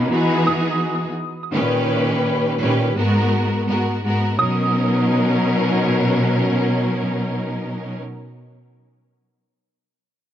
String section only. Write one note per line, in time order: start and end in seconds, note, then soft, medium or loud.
0.00 0.10 B2 loud
0.00 0.11 A#3 loud
0.00 0.11 C#4 loud
0.00 0.10 D#4 medium
0.10 1.11 E3 loud
0.10 1.11 B3 medium
0.10 1.11 D#4 loud
0.10 1.12 F#4 medium
0.10 1.12 G#4 loud
1.52 2.54 A#2 medium
1.52 2.53 D#3 loud
1.52 2.54 C#4 medium
1.52 2.54 G4 medium
1.52 2.54 B4 loud
2.59 2.94 A#2 medium
2.59 2.93 D#3 medium
2.59 2.94 C#4 medium
2.59 2.94 G4 medium
2.59 2.95 B4 loud
2.95 3.63 G#2 loud
2.95 3.63 G#3 loud
2.95 3.63 B3 loud
2.95 3.64 F#4 medium
2.95 3.64 A#4 loud
3.67 4.01 G#2 medium
3.67 4.01 G#3 medium
3.67 4.02 B3 medium
3.67 4.02 F#4 medium
3.67 4.02 A#4 medium
4.03 4.36 G#2 medium
4.03 4.37 G#3 medium
4.03 4.37 B3 medium
4.03 4.37 F#4 medium
4.03 4.38 A#4 loud
4.39 8.00 B2 loud
4.39 8.00 F#3 medium
4.39 8.01 C#4 medium
4.39 8.01 D#4 medium
4.39 8.01 A#4 loud